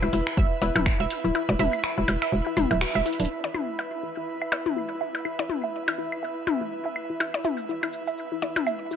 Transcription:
Already playing: analog synth pad E4 B4 E5 B5, synth texture B4
0.02 fm bass E1, synth pluck E4, claves, percussion blips
0.13 fm bass E1, synth pluck E4, closed hi-hat, cabasa
0.27 finger snap, cabasa
0.37 fm bass E1, synth pluck E5, kick, cabasa
0.62 fm bass E1, synth stab B3 E4 B4, synth pluck E4, closed hi-hat, percussion blips, cabasa
0.76 fm bass D1, synth pluck E4, high tom, cabasa, percussion blips
0.86 finger snap, kick, cabasa, claves
1.00 fm bass E1, synth pluck E5
1.10 closed hi-hat, cabasa
1.24 fm bass D1, synth pluck E4, cabasa
1.34 synth pluck E4, cabasa, percussion blips
1.49 fm bass E1, percussion blips
1.59 fm bass E1, synth pluck E5, closed hi-hat, high tom, cabasa
1.73 cabasa, claves
1.83 synth pluck E4, finger snap, cabasa
1.98 fm bass E1, synth pluck E4
2.08 fm bass E1, closed hi-hat, cabasa, percussion blips
2.22 synth pluck E5, finger snap, cabasa
2.32 fm bass E1, cabasa
2.46 synth pluck E4
2.57 fm bass E1, synth pluck E4, closed hi-hat, high tom, cabasa, claves
2.71 fm bass D1, synth pluck E5, cabasa, percussion blips
2.81 synth pluck F#4, finger snap, cabasa
2.95 fm bass E1, synth pluck E5
3.06 synth pluck E4, closed hi-hat, cabasa
3.13 closed hi-hat
3.20 fm bass D1, synth pluck D4, closed hi-hat, cabasa
3.25 closed hi-hat
3.30 synth texture E5
3.44 synth pluck E4, percussion blips
3.54 synth pluck E4, high tom, claves
3.79 synth pluck E5, percussion blips
4.03 synth pluck E4
4.17 synth pluck E4
4.42 synth pluck E5, claves
4.52 synth stab B3 E4 B4, percussion blips
4.66 synth pluck E4, high tom
4.77 synth pluck E4
5.01 synth pluck E5
5.15 percussion blips
5.25 synth pluck E4, claves
5.39 synth pluck E4, percussion blips
5.50 high tom
5.64 synth pluck E5
5.88 synth pluck E4, percussion blips
5.98 synth pluck E4
6.12 claves
6.23 synth stab B3 E4 B4, synth pluck E5
6.47 synth pluck E4, high tom, percussion blips
6.61 synth pluck E4
6.85 synth pluck E5
6.96 claves
7.10 synth pluck E4
7.20 synth pluck E4, cabasa, percussion blips
7.34 percussion blips
7.44 synth pluck E5, high tom, cabasa
7.58 cabasa
7.69 synth pluck E4, cabasa
7.83 synth pluck E4, claves, percussion blips
7.93 cabasa
8.07 synth pluck E5, cabasa
8.18 cabasa
8.32 synth pluck E4
8.42 synth stab B3 E4 B4, synth pluck E4, percussion blips, cabasa
8.56 high tom, cabasa, percussion blips
8.67 synth pluck E5, cabasa, claves
8.91 synth pluck E4, cabasa

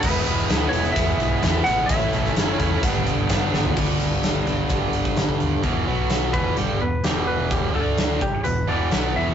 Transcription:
0.00 fingered electric bass E1, overdriven electric guitar E3 G#3, tonewheel organ B3 E4 G#4, electric slide guitar B4, kick, crash
0.05 overdriven electric guitar B3 E4
0.26 fingered electric bass E1, overdriven electric guitar G#3 B3 E4, closed hi-hat
0.38 closed hi-hat
0.49 fingered electric bass D2, overdriven electric guitar E3 G#3 B3 E4, snare, closed hi-hat
0.69 fingered electric bass E1, distorted electric guitar E4, electric slide guitar C#5, closed hi-hat
0.74 distorted electric guitar G#3 B3
0.85 closed hi-hat
0.92 fingered electric bass E2, overdriven electric guitar E3, electric slide guitar E5, kick, closed hi-hat
0.97 overdriven electric guitar G#3 B3 E4
1.07 closed hi-hat
1.18 fingered electric bass B1, overdriven electric guitar G#3 B3 E4, closed hi-hat
1.43 fingered electric bass E2, overdriven electric guitar E3 G#3 B3 E4, kick, snare, closed hi-hat
1.64 fingered electric bass A1, overdriven electric guitar B3 E4, electric slide guitar F#5, closed hi-hat
1.68 overdriven electric guitar G#3
1.86 fingered electric bass A1, overdriven electric guitar A2 E3, tonewheel organ C#4 E4 A4, electric slide guitar E5, kick, closed hi-hat
1.90 overdriven electric guitar A3 C#4 E4
2.01 closed hi-hat
2.11 fingered electric bass A1, overdriven electric guitar A3 C#4 E4, closed hi-hat
2.25 snare
2.35 fingered electric bass F#1, overdriven electric guitar E3 A3 C#4 E4, snare, closed hi-hat
2.60 fingered electric bass E2, distorted electric guitar A3 C#4 E4, kick, closed hi-hat
2.82 fingered electric bass G1, overdriven electric guitar G2 D3 G3 B3 D4, tonewheel organ B3 G4 A4, kick, closed hi-hat
2.95 closed hi-hat
3.05 fingered electric bass G1, overdriven electric guitar B3 D4, closed hi-hat
3.09 overdriven electric guitar G3
3.29 distorted electric guitar G2, fingered electric bass G2, overdriven electric guitar D3 G3 B3 D4, kick, snare, closed hi-hat
3.53 fingered electric bass G1, overdriven electric guitar G3 B3 D4, snare
3.65 floor tom
3.76 fingered electric bass G1, overdriven electric guitar G2 D3 G3 B3, kick, crash
3.80 overdriven electric guitar D4
4.00 fingered electric bass G1, closed hi-hat
4.23 fingered electric bass G1, snare, closed hi-hat
4.47 fingered electric bass G1, overdriven electric guitar G2 D3 G3 B3 D4, closed hi-hat
4.69 fingered electric bass G1, distorted electric guitar G2 D3 G3, kick, closed hi-hat
4.93 fingered electric bass G1, closed hi-hat
5.05 kick, snare
5.17 fingered electric bass G1, snare, closed hi-hat
5.29 kick
5.40 fingered electric bass D#2, closed hi-hat
5.63 fingered electric bass E1, overdriven electric guitar E2 B2 E3, kick, closed hi-hat
5.86 fingered electric bass B1, overdriven electric guitar B2 F#3 B3
6.10 snare, closed hi-hat
6.33 fingered electric bass E1, overdriven electric guitar E2 B2 E3, electric slide guitar B4, kick
6.57 fingered electric bass G1, overdriven electric guitar G2 D3 G3, electric slide guitar G4, closed hi-hat
6.80 fingered electric bass E1, overdriven electric guitar E2 B2, electric slide guitar B4
7.04 fingered electric bass E1, overdriven electric guitar E2 B2 E3, electric slide guitar G4, snare, closed hi-hat
7.27 electric slide guitar B4
7.51 electric slide guitar G4, kick, closed hi-hat
7.74 fingered electric bass D2, overdriven electric guitar D3 A3 D4, electric slide guitar A4
7.98 snare, closed hi-hat
8.21 electric slide guitar G4, muted overdriven electric guitar stroke, muted fingered electric bass stroke, muted distorted electric guitar stroke, kick
8.44 fingered electric bass E1, overdriven electric guitar E2 B2, electric slide guitar B4, closed hi-hat
8.67 fingered electric bass E1, overdriven electric guitar E2 B2 E3, electric slide guitar D5
8.91 fingered electric bass B1, overdriven electric guitar B2 F#3 B3, snare, closed hi-hat
9.14 fingered electric bass E1, overdriven electric guitar E2 B2 E3, electric slide guitar E5

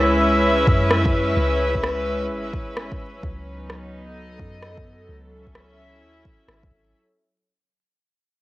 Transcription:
Already playing: 808-style bass C#2, string section G#3 C#4 E4 B4 E5
0.67 808-style bass F#2, kick
0.91 cross-stick
1.05 kick
1.37 808-style bass C#2
1.75 kick
1.84 cross-stick
2.30 808-style bass G#1
2.54 kick
2.77 cross-stick
2.92 kick
3.23 808-style bass C#2, string section F#3, kick
3.45 string section B3
3.57 string section D#4
3.70 cross-stick
4.10 string section A4 D#5
4.39 808-style bass F#2, kick
4.62 cross-stick
4.77 kick
5.09 808-style bass C#2
5.26 string section C#4
5.39 string section E5
5.47 kick
5.54 string section E4, cross-stick
6.02 808-style bass D#2
6.25 kick
6.48 808-style bass G#1, cross-stick
6.63 kick
6.71 808-style bass G#1

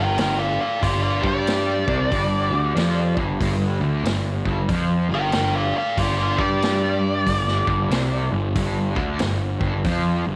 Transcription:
Already playing: picked electric bass G1, overdriven electric guitar G2, lead electric guitar A#4 G5
0.00 lead electric guitar A#4
0.17 picked electric bass G1, overdriven electric guitar G2, lead electric guitar A#4 G5, snare, open hi-hat
0.39 lead electric guitar A4 D5 F5
0.61 lead electric guitar A4 D5 F5
0.82 picked electric bass G1, overdriven electric guitar G2, lead electric guitar F4 G4 D5, kick, open hi-hat
1.02 lead electric guitar F4 D5
1.22 picked electric bass G2, overdriven electric guitar G3, lead electric guitar G4, kick
1.27 lead electric guitar D5
1.47 snare, open hi-hat
1.87 picked electric bass C2, overdriven electric guitar C3, kick
2.11 picked electric bass G1, overdriven electric guitar G2, kick, open hi-hat
2.50 picked electric bass D2, overdriven electric guitar D3
2.76 picked electric bass F2, overdriven electric guitar F3, snare, open hi-hat
3.17 picked electric bass G1, overdriven electric guitar G2, kick
3.40 picked electric bass G1, overdriven electric guitar G2, kick, open hi-hat
3.80 picked electric bass D2, overdriven electric guitar D3
4.04 picked electric bass G1, overdriven electric guitar G2, snare, open hi-hat
4.45 picked electric bass G1, overdriven electric guitar G2, kick
4.69 picked electric bass F2, overdriven electric guitar F3, kick, open hi-hat
5.09 picked electric bass G1, overdriven electric guitar G2, lead electric guitar A#4
5.14 lead electric guitar A#4 G5
5.32 picked electric bass G1, overdriven electric guitar G2, lead electric guitar A#4 G5, snare, open hi-hat
5.37 lead electric guitar A#4
5.55 lead electric guitar A4 D5 F5
5.77 lead electric guitar A4 D5 F5
5.97 picked electric bass G1, overdriven electric guitar G2, lead electric guitar F4 D5, kick, open hi-hat
6.02 lead electric guitar G4
6.18 lead electric guitar F4 D5
6.22 lead electric guitar F4
6.38 picked electric bass G2, overdriven electric guitar G3, lead electric guitar D5, kick
6.42 lead electric guitar G4
6.62 snare, open hi-hat
7.27 picked electric bass G1, overdriven electric guitar G2, kick, open hi-hat
7.48 snare
7.67 picked electric bass G1, overdriven electric guitar G2, kick
7.89 picked electric bass C2, overdriven electric guitar C3, snare, open hi-hat
8.31 picked electric bass G1, overdriven electric guitar G2
8.55 picked electric bass G1, overdriven electric guitar G2, kick, open hi-hat
8.95 picked electric bass D2, overdriven electric guitar D3, kick
9.19 picked electric bass G1, overdriven electric guitar G2, snare, open hi-hat
9.60 picked electric bass G1, overdriven electric guitar G2, kick
9.84 picked electric bass F2, overdriven electric guitar F3, kick, open hi-hat
10.26 picked electric bass G1, overdriven electric guitar G2

